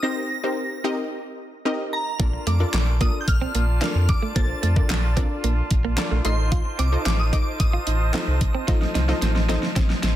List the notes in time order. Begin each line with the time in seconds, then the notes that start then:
0.03 C4 D#4 G4 A#4 C5 A#6
0.43 C4 D#4 G4 A#4 C5
0.84 C4 D#4 G4 A#4 D#5
1.65 C4 D#4 G4 A#4 D#5
1.93 A#5
2.19 A#1 A#3 D4 F4 A4 A#4 D5 A5, kick, closed hi-hat
2.33 muted clean electric guitar stroke
2.47 F2 A3 D6, closed hi-hat
2.60 D4 F4 A4 A#4 D5
2.74 A#1 D6, snare, clap, closed hi-hat
3.01 A#3 D4 F4 A4 A#4 D5 D#6, kick, closed hi-hat
3.21 G6
3.28 A#1 F6, muted clean electric guitar stroke, kick, closed hi-hat
3.41 C4
3.55 A#1 A#3, closed hi-hat
3.82 A3 D4 F4 A4 A#4 D5 F6, snare, clap, closed hi-hat
3.95 F2, muted clean electric guitar stroke
4.09 D6, kick, closed hi-hat
4.22 A3
4.35 A#1 A#3 D4 F4 A4 A#4 C5 A6, kick, closed hi-hat
4.50 muted clean electric guitar stroke
4.63 F2 A3, closed hi-hat
4.76 D4 F4 A4 A#4 D5, kick
4.90 A#1, snare, clap, closed hi-hat
5.16 C4 D4 F4 A4 A#4 D5, kick, closed hi-hat
5.44 A#1 A#3, closed hi-hat
5.71 A#1, muted clean electric guitar stroke, kick, closed hi-hat
5.85 A#3
5.98 D4 F4 A4 A#4 D5, muted clean electric guitar stroke, snare, clap, closed hi-hat
6.11 A#1 A3
6.25 A1 A3 D#4 F4 A4 C5 D#5 A5 C6, closed hi-hat
6.52 F4, kick, closed hi-hat
6.65 muted clean electric guitar stroke
6.79 C2 C4 D6, closed hi-hat
6.92 D#4 F4 A4 C5 D#5
7.06 A1 D6, snare, clap, closed hi-hat
7.19 D#6
7.33 D#4 F4 A4 C5 D#5 D6, kick, closed hi-hat
7.60 A1 D#6, muted clean electric guitar stroke, kick, closed hi-hat
7.73 F4
7.87 A1 D#4, closed hi-hat
8.14 C4 D#4 F4 A4 C5 D#5, snare, clap, closed hi-hat
8.28 C2, muted clean electric guitar stroke
8.41 kick, closed hi-hat
8.55 C4
8.68 A1 D#4 F4 A4 C5 D#5, kick, snare, closed hi-hat
8.81 muted clean electric guitar stroke, snare
8.95 C2 D#4, snare, closed hi-hat
9.08 D#4 F4 A4 C5 D#5, snare
9.22 A1, snare, closed hi-hat
9.36 snare
9.49 C4 D#4 F4 A4 C5 D#5, snare, closed hi-hat
9.63 snare
9.76 A1 C4, kick, snare, closed hi-hat
9.90 snare
10.03 A1, muted clean electric guitar stroke, snare, closed hi-hat